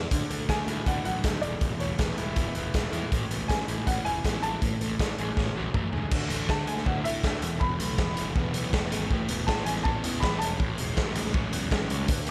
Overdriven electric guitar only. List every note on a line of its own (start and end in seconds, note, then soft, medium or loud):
0.12 1.06 D3 medium
0.31 1.24 A3 medium
0.49 0.86 D4 medium
0.68 2.18 E4 medium
0.87 1.43 D4 medium
1.06 1.43 F#3 medium
1.24 1.81 A3 medium
1.44 1.61 E2 medium
1.62 2.56 E2 medium
1.82 2.74 A3 medium
2.00 2.37 B3 medium
2.19 2.92 E4 medium
2.38 3.12 B3 medium
2.56 3.12 E3 medium
2.75 3.30 A3 medium
2.93 3.12 E4 medium
3.11 4.05 A2 medium
3.30 4.24 B3 medium
3.49 3.86 C#4 medium
3.68 4.42 E4 medium
3.87 4.62 C#4 medium
4.06 4.62 E3 medium
4.25 4.62 B3 medium
4.44 4.62 E4 medium
4.62 5.56 A2 medium
4.81 5.73 A3 medium
5.00 5.37 C#4 medium
5.19 5.92 G#4 medium
5.38 6.12 C#4 medium
5.56 6.12 F#3 medium
5.75 6.12 A3 medium
5.93 6.12 G#4 medium
6.12 6.48 D3 medium
6.30 6.68 A3 medium
6.49 7.04 D3 medium
6.69 7.24 A3 medium
6.87 8.35 E4 medium
7.06 7.43 D3 medium
7.24 7.80 A3 medium
7.43 7.60 E2 medium
7.61 8.55 E2 medium
7.80 8.17 A3 medium
7.99 8.53 E3 medium
8.18 8.73 A3 medium
8.36 8.91 B3 medium
8.55 9.11 E3 medium
8.73 9.29 A3 medium
8.92 9.11 B3 medium
9.10 10.04 A2 medium
9.30 9.65 B3 medium
9.48 10.03 E3 medium
9.66 10.22 B3 medium
9.86 10.41 C#4 medium
10.04 10.60 E3 medium
10.23 10.60 B3 medium
10.42 10.60 C#4 medium
10.61 11.53 A2 medium
10.79 11.15 G#3 medium
10.98 11.53 F#3 medium
11.16 11.71 G#3 medium
11.35 11.90 C#4 medium
11.54 12.09 F#3 medium
11.72 12.09 G#3 medium
11.91 12.09 C#4 medium
12.10 12.31 D3 medium
12.28 12.31 A3 medium